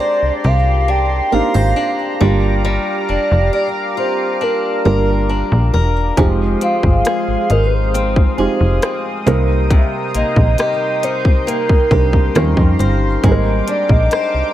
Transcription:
0.00 2.20 G#3 medium
0.00 0.54 A#3 medium
0.00 0.55 C4 medium
0.00 0.55 D4 medium
0.00 0.88 D4 medium
0.00 0.55 D#4 medium
0.00 0.55 G4 medium
0.00 2.16 G4 medium
0.00 1.32 C5 medium
0.00 0.47 D5 loud
0.00 2.18 D5 medium
0.00 6.14 A#5 medium
0.00 2.18 C6 medium
0.22 0.31 C2 soft
0.44 1.21 C2 medium
0.44 3.94 G4 medium
0.44 0.91 F5 loud
0.88 1.76 D4 medium
0.88 1.35 G5 loud
1.32 1.42 G#1 soft
1.32 2.19 A#3 medium
1.32 2.21 C4 medium
1.32 2.20 D4 medium
1.32 2.21 D#4 medium
1.32 2.21 G4 medium
1.32 1.54 A#4 medium
1.32 2.21 F5 loud
1.54 1.74 G#1 medium
1.54 2.29 C5 medium
1.76 3.08 D4 medium
2.20 2.78 G1 loud
2.20 3.63 G3 medium
2.20 2.63 G3 medium
2.20 3.63 A#3 medium
2.20 3.64 D4 medium
2.20 3.64 F4 medium
2.20 6.14 G4 medium
2.20 3.64 G4 medium
2.20 6.14 F5 medium
2.20 6.14 D6 medium
2.65 6.18 G3 medium
3.09 3.18 F1 soft
3.09 4.40 D4 medium
3.09 3.51 D5 loud
3.31 3.50 F1 medium
3.53 4.84 A#4 medium
3.53 3.68 D5 loud
3.97 7.06 F4 medium
3.97 4.44 C5 medium
4.41 5.28 D4 medium
4.41 5.30 A#4 medium
4.85 5.43 G1 medium
4.85 5.92 G3 medium
4.85 5.92 A#3 medium
4.85 5.93 D4 medium
4.85 5.93 F4 medium
4.85 5.72 A#4 medium
4.85 5.93 A#4 medium
5.29 6.26 D4 medium
5.52 5.71 A#1 loud
5.74 6.12 E1 medium
5.74 6.26 A#4 medium
6.17 6.56 F1 loud
6.17 9.35 F3 medium
6.17 7.60 G#3 medium
6.17 9.23 G#3 medium
6.17 7.60 C4 medium
6.17 7.61 D#4 medium
6.17 7.61 F4 medium
6.17 7.61 G4 loud
6.17 9.23 F5 medium
6.17 14.53 C6 medium
6.17 12.31 D#6 medium
6.17 kick loud
6.17 closed hi-hat medium
6.61 7.94 C4 medium
6.61 6.83 F5 loud
6.61 closed hi-hat medium
6.83 7.03 G1 medium
6.83 7.53 F5 loud
6.83 kick medium
7.05 8.37 G#4 medium
7.05 cross-stick loud
7.05 closed hi-hat medium
7.28 7.37 G#1 soft
7.50 8.27 G#1 medium
7.50 11.00 D#4 medium
7.50 7.68 A#4 medium
7.50 closed hi-hat medium
7.66 7.75 B4 medium
7.74 8.61 C5 medium
7.94 8.82 C4 medium
7.94 closed hi-hat medium
8.16 kick medium
8.37 8.47 F1 soft
8.37 9.26 G#3 medium
8.37 9.25 C4 medium
8.37 9.26 D#4 medium
8.37 9.27 F4 medium
8.37 9.27 G4 medium
8.37 9.35 G#4 medium
8.61 8.80 F1 medium
8.82 10.14 C4 medium
8.82 cross-stick loud
8.82 closed hi-hat medium
9.26 9.84 C2 loud
9.26 9.69 C3 medium
9.26 10.69 G3 medium
9.26 10.70 A#3 medium
9.26 10.69 C4 medium
9.26 10.70 D#4 medium
9.26 12.32 A#4 medium
9.26 10.70 A#4 loud
9.26 12.32 G5 medium
9.26 closed hi-hat medium
9.70 12.44 C3 medium
9.70 kick loud
9.70 closed hi-hat medium
10.15 10.24 A#1 soft
10.15 11.47 A#3 medium
10.15 10.57 D#5 loud
10.15 closed hi-hat medium
10.36 10.56 A#1 medium
10.36 kick medium
10.58 11.91 G4 medium
10.58 11.06 D#5 loud
10.58 cross-stick loud
10.58 closed hi-hat medium
11.03 13.67 D#4 medium
11.03 11.50 C5 medium
11.03 closed hi-hat medium
11.25 kick medium
11.47 12.82 A#3 medium
11.47 12.36 A#4 medium
11.47 closed hi-hat medium
11.69 kick medium
11.91 12.29 C2 medium
11.91 12.35 G3 medium
11.91 12.34 C4 medium
11.91 12.36 D4 medium
11.91 12.36 D#4 medium
11.91 13.26 G4 medium
11.91 12.35 A#4 medium
11.91 kick medium
12.13 kick medium
12.35 12.55 D#2 loud
12.35 13.71 D#3 medium
12.35 12.42 F3 medium
12.35 13.07 C4 medium
12.35 13.07 C#4 medium
12.35 13.07 F4 medium
12.35 13.23 G4 medium
12.35 13.08 A#4 medium
12.35 13.23 F5 medium
12.35 13.23 A#5 medium
12.35 cross-stick loud
12.35 closed hi-hat medium
12.41 13.10 G3 medium
12.57 12.76 F2 medium
12.57 kick medium
12.79 13.18 G1 medium
12.79 13.71 C5 medium
12.79 closed hi-hat medium
13.23 13.62 G#1 loud
13.23 14.53 G3 medium
13.23 14.53 G#3 medium
13.23 14.53 A#3 medium
13.23 14.53 C4 medium
13.23 14.53 D#4 medium
13.23 13.31 G#4 medium
13.23 14.53 A#4 medium
13.23 14.53 G5 medium
13.23 14.53 D6 medium
13.23 kick loud
13.23 closed hi-hat medium
13.32 14.53 A#4 loud
13.68 14.53 D4 medium
13.68 13.93 D5 loud
13.68 closed hi-hat medium
13.89 14.09 A#1 medium
13.89 14.53 D#5 loud
13.89 kick medium
14.11 14.53 C5 medium
14.11 cross-stick loud
14.11 closed hi-hat medium
14.34 14.43 C2 soft

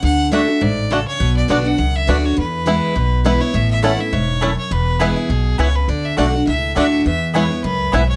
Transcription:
0.02 0.44 D2 medium
0.02 0.30 D3 loud
0.02 0.31 F#5 loud
0.31 0.47 D3 medium
0.31 0.48 A3 medium
0.31 0.40 A3 medium
0.31 0.48 D4 loud
0.31 0.40 D4 medium
0.31 0.46 F#4 medium
0.31 0.40 F#4 medium
0.31 0.64 E5 medium
0.48 0.62 D4 soft
0.48 0.61 F#4 medium
0.61 1.03 A1 loud
0.61 0.89 G#2 medium
0.61 0.93 D5 loud
0.90 1.19 C#3 medium
0.90 0.99 A3 medium
0.90 0.99 D4 medium
0.90 0.99 F#4 medium
0.90 1.07 A4 loud
1.08 1.34 C#5 loud
1.20 1.41 B1 medium
1.20 1.76 B2 medium
1.37 1.49 D5 loud
1.48 1.75 B1 medium
1.48 1.64 D3 medium
1.48 1.64 B3 medium
1.48 1.57 B3 medium
1.48 1.65 D4 medium
1.48 1.57 D4 medium
1.48 1.63 F#4 medium
1.48 1.57 F#4 medium
1.48 1.68 D5 medium
1.64 1.78 D4 soft
1.64 1.78 F#4 medium
1.64 1.97 F#5 medium
1.78 2.04 C#2 medium
1.78 2.34 F#2 medium
1.96 2.11 E5 loud
2.07 2.33 D2 medium
2.07 2.23 D3 medium
2.07 2.23 B3 medium
2.07 2.16 B3 medium
2.07 2.23 D4 loud
2.07 2.16 D4 medium
2.07 2.22 F#4 medium
2.07 2.16 F#4 medium
2.07 2.27 D5 loud
2.24 2.37 D4 soft
2.24 2.37 F#4 medium
2.24 2.38 C#5 medium
2.37 2.93 E2 medium
2.37 2.78 E2 medium
2.37 3.22 B4 loud
2.66 2.94 E3 medium
2.66 2.94 G#3 medium
2.66 2.95 B3 medium
2.66 2.74 B3 medium
2.66 2.95 E4 medium
2.66 2.74 E4 medium
2.96 3.37 B1 medium
2.96 3.52 B2 medium
3.24 3.40 E3 medium
3.24 3.40 G#3 medium
3.24 3.41 B3 medium
3.24 3.32 B3 medium
3.24 3.39 E4 loud
3.24 3.33 E4 medium
3.24 3.43 B4 medium
3.40 3.54 B3 soft
3.40 3.54 E4 medium
3.40 3.57 C#5 medium
3.54 3.95 A1 medium
3.54 4.10 A2 medium
3.54 3.70 E5 loud
3.71 3.83 E5 loud
3.83 3.98 E3 medium
3.83 3.93 A3 medium
3.83 3.99 A3 medium
3.83 3.91 A3 medium
3.83 3.99 C#4 medium
3.83 3.91 C#4 medium
3.83 3.93 E4 medium
3.83 3.97 E4 loud
3.83 3.91 E4 medium
3.83 3.93 C#5 loud
3.83 4.02 F#5 medium
3.83 3.94 A5 loud
3.99 4.13 C#4 soft
3.99 4.12 E4 medium
3.99 4.15 E5 medium
4.13 4.54 E1 medium
4.13 4.41 G#2 medium
4.13 4.58 C#5 medium
4.41 4.70 F#2 medium
4.41 4.51 A3 medium
4.41 4.49 A3 medium
4.41 4.49 C#4 medium
4.41 4.52 E4 medium
4.41 4.50 E4 medium
4.41 4.52 C#5 medium
4.41 4.52 A5 loud
4.58 4.73 C#5 medium
4.71 5.12 E1 medium
4.71 5.27 E2 medium
4.71 5.02 B4 medium
4.99 5.15 E3 medium
4.99 5.16 G#3 medium
4.99 5.10 B3 medium
4.99 5.16 B3 medium
4.99 5.08 B3 medium
4.99 5.10 E4 loud
4.99 5.15 E4 loud
4.99 5.08 E4 medium
4.99 5.59 G#4 medium
4.99 5.10 B4 loud
4.99 5.10 G#5 loud
5.16 5.30 B3 soft
5.16 5.29 E4 medium
5.29 5.54 B1 medium
5.29 5.58 B2 medium
5.58 5.84 C#2 medium
5.58 5.87 C#3 medium
5.58 5.68 B3 medium
5.58 5.66 B3 medium
5.58 5.69 E4 loud
5.58 5.67 E4 medium
5.58 5.69 B4 medium
5.58 5.77 C#5 loud
5.58 5.69 G#5 loud
5.76 5.91 B4 medium
5.88 6.09 D2 loud
5.88 6.16 D3 medium
5.88 6.07 D5 medium
6.05 6.18 E5 loud
6.17 6.43 B1 medium
6.17 6.33 D3 medium
6.17 6.27 A3 medium
6.17 6.33 A3 medium
6.17 6.25 A3 medium
6.17 6.33 D4 medium
6.17 6.25 D4 medium
6.17 6.27 F#4 medium
6.17 6.32 F#4 medium
6.17 6.25 F#4 medium
6.17 6.27 D5 loud
6.17 6.28 F#5 medium
6.17 6.45 F#5 medium
6.33 6.47 D4 medium
6.33 6.46 F#4 medium
6.47 6.72 C#2 medium
6.47 7.03 A2 loud
6.47 6.74 E5 loud
6.75 7.01 D2 medium
6.75 7.04 D3 medium
6.75 6.86 A3 medium
6.75 7.04 A3 medium
6.75 6.84 A3 medium
6.75 7.05 D4 loud
6.75 6.84 D4 medium
6.75 6.86 F#4 medium
6.75 6.84 F#4 medium
6.75 7.05 F#4 medium
6.75 6.86 D5 medium
6.75 7.04 E5 loud
6.75 6.86 F#5 medium
7.06 7.47 E2 medium
7.06 7.62 E2 medium
7.06 7.33 E5 loud
7.34 7.50 E3 medium
7.34 7.50 G#3 medium
7.34 7.44 B3 medium
7.34 7.42 B3 medium
7.34 7.50 B3 medium
7.34 7.44 E4 medium
7.34 7.43 E4 medium
7.34 7.49 E4 medium
7.34 7.44 B4 loud
7.34 7.62 C#5 medium
7.34 7.45 G#5 loud
7.50 7.64 B3 medium
7.50 7.63 E4 medium
7.64 7.89 C#2 medium
7.64 7.92 F#2 medium
7.64 7.95 B4 medium
7.92 8.16 B1 medium
7.92 8.16 G#2 medium
7.92 8.03 B3 medium
7.92 8.01 B3 medium
7.92 8.03 E4 loud
7.92 8.01 E4 medium
7.92 8.03 B4 medium
7.92 8.08 E5 medium
7.92 8.03 G#5 medium
8.09 8.16 C#5 medium

